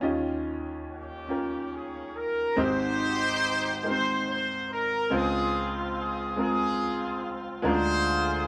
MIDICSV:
0, 0, Header, 1, 3, 480
1, 0, Start_track
1, 0, Key_signature, -4, "major"
1, 0, Tempo, 845070
1, 22, Time_signature, 6, 3, 24, 8
1, 4812, End_track
2, 0, Start_track
2, 0, Title_t, "Horn section"
2, 0, Program_c, 0, 61
2, 509, Note_on_c, 0, 58, 56
2, 511, Note_on_c, 0, 67, 73
2, 512, Note_on_c, 0, 61, 61
2, 966, Note_off_c, 0, 67, 0
2, 988, Note_on_c, 0, 68, 68
2, 1205, Note_off_c, 0, 58, 0
2, 1206, Note_off_c, 0, 61, 0
2, 1222, Note_on_c, 0, 70, 95
2, 1226, Note_off_c, 0, 68, 0
2, 1463, Note_off_c, 0, 70, 0
2, 1470, Note_on_c, 0, 67, 104
2, 1472, Note_on_c, 0, 63, 99
2, 1473, Note_on_c, 0, 72, 127
2, 2165, Note_off_c, 0, 67, 0
2, 2166, Note_off_c, 0, 63, 0
2, 2189, Note_off_c, 0, 72, 0
2, 2199, Note_on_c, 0, 72, 106
2, 2416, Note_off_c, 0, 72, 0
2, 2435, Note_on_c, 0, 72, 99
2, 2654, Note_off_c, 0, 72, 0
2, 2678, Note_on_c, 0, 70, 101
2, 2912, Note_off_c, 0, 70, 0
2, 2912, Note_on_c, 0, 60, 93
2, 2914, Note_on_c, 0, 65, 92
2, 2919, Note_on_c, 0, 68, 114
2, 3240, Note_off_c, 0, 68, 0
2, 3403, Note_on_c, 0, 68, 85
2, 3605, Note_off_c, 0, 60, 0
2, 3606, Note_off_c, 0, 65, 0
2, 3618, Note_off_c, 0, 68, 0
2, 3631, Note_on_c, 0, 60, 77
2, 3632, Note_on_c, 0, 65, 80
2, 3638, Note_on_c, 0, 68, 105
2, 4148, Note_off_c, 0, 68, 0
2, 4324, Note_off_c, 0, 60, 0
2, 4325, Note_off_c, 0, 65, 0
2, 4351, Note_on_c, 0, 68, 89
2, 4354, Note_on_c, 0, 65, 102
2, 4360, Note_on_c, 0, 72, 127
2, 4809, Note_off_c, 0, 72, 0
2, 4812, Note_off_c, 0, 65, 0
2, 4812, Note_off_c, 0, 68, 0
2, 4812, End_track
3, 0, Start_track
3, 0, Title_t, "Grand piano"
3, 0, Program_c, 1, 0
3, 0, Control_c, 1, 64, 127
3, 6, Note_on_c, 1, 61, 84
3, 9, Note_on_c, 1, 65, 69
3, 14, Note_on_c, 1, 39, 69
3, 14, Note_on_c, 1, 51, 65
3, 16, Note_on_c, 1, 67, 71
3, 18, Note_on_c, 1, 75, 85
3, 29, Control_c, 1, 64, 0
3, 132, Control_c, 1, 64, 127
3, 552, Note_off_c, 1, 61, 0
3, 554, Note_off_c, 1, 65, 0
3, 557, Note_off_c, 1, 67, 0
3, 558, Note_off_c, 1, 75, 0
3, 730, Note_on_c, 1, 61, 61
3, 734, Note_on_c, 1, 65, 58
3, 740, Note_on_c, 1, 79, 57
3, 742, Note_on_c, 1, 70, 75
3, 1275, Note_off_c, 1, 61, 0
3, 1277, Note_off_c, 1, 65, 0
3, 1280, Note_off_c, 1, 79, 0
3, 1281, Note_off_c, 1, 70, 0
3, 1438, Note_off_c, 1, 39, 0
3, 1438, Note_off_c, 1, 51, 0
3, 1454, Note_on_c, 1, 56, 80
3, 1458, Note_on_c, 1, 60, 85
3, 1460, Note_on_c, 1, 44, 72
3, 1462, Note_on_c, 1, 32, 71
3, 1463, Note_on_c, 1, 63, 71
3, 1464, Note_on_c, 1, 67, 82
3, 1471, Note_on_c, 1, 72, 86
3, 1472, Control_c, 1, 64, 0
3, 1572, Control_c, 1, 64, 127
3, 1997, Note_off_c, 1, 56, 0
3, 1999, Note_off_c, 1, 60, 0
3, 2001, Note_off_c, 1, 63, 0
3, 2002, Note_off_c, 1, 67, 0
3, 2005, Note_off_c, 1, 72, 0
3, 2176, Note_on_c, 1, 56, 62
3, 2180, Note_on_c, 1, 58, 51
3, 2183, Note_on_c, 1, 63, 63
3, 2187, Note_on_c, 1, 67, 54
3, 2192, Note_on_c, 1, 70, 73
3, 2216, Note_on_c, 1, 60, 65
3, 2220, Note_off_c, 1, 58, 0
3, 2717, Note_off_c, 1, 56, 0
3, 2721, Note_off_c, 1, 63, 0
3, 2723, Note_off_c, 1, 67, 0
3, 2725, Note_off_c, 1, 70, 0
3, 2738, Note_off_c, 1, 60, 0
3, 2880, Note_off_c, 1, 44, 0
3, 2881, Note_off_c, 1, 32, 0
3, 2896, Note_on_c, 1, 56, 78
3, 2899, Note_on_c, 1, 60, 73
3, 2901, Note_on_c, 1, 37, 74
3, 2903, Note_on_c, 1, 49, 66
3, 2906, Note_on_c, 1, 65, 81
3, 2908, Note_on_c, 1, 72, 89
3, 2912, Control_c, 1, 64, 0
3, 3012, Control_c, 1, 64, 127
3, 3438, Note_off_c, 1, 56, 0
3, 3439, Note_off_c, 1, 60, 0
3, 3442, Note_off_c, 1, 65, 0
3, 3444, Note_off_c, 1, 72, 0
3, 3614, Note_on_c, 1, 56, 68
3, 3620, Note_on_c, 1, 60, 65
3, 3623, Note_on_c, 1, 65, 59
3, 3628, Note_on_c, 1, 70, 78
3, 4156, Note_off_c, 1, 56, 0
3, 4159, Note_off_c, 1, 60, 0
3, 4160, Note_off_c, 1, 65, 0
3, 4163, Note_off_c, 1, 70, 0
3, 4319, Note_off_c, 1, 37, 0
3, 4320, Note_off_c, 1, 49, 0
3, 4329, Note_on_c, 1, 56, 99
3, 4334, Note_on_c, 1, 58, 85
3, 4337, Note_on_c, 1, 38, 76
3, 4338, Note_on_c, 1, 50, 75
3, 4339, Note_on_c, 1, 61, 65
3, 4342, Note_on_c, 1, 65, 82
3, 4344, Note_on_c, 1, 70, 100
3, 4352, Control_c, 1, 64, 0
3, 4374, Note_on_c, 1, 62, 83
3, 4378, Note_off_c, 1, 61, 0
3, 4446, Control_c, 1, 64, 127
3, 4812, Note_off_c, 1, 38, 0
3, 4812, Note_off_c, 1, 50, 0
3, 4812, Note_off_c, 1, 56, 0
3, 4812, Note_off_c, 1, 58, 0
3, 4812, Note_off_c, 1, 62, 0
3, 4812, Note_off_c, 1, 65, 0
3, 4812, Note_off_c, 1, 70, 0
3, 4812, End_track
0, 0, End_of_file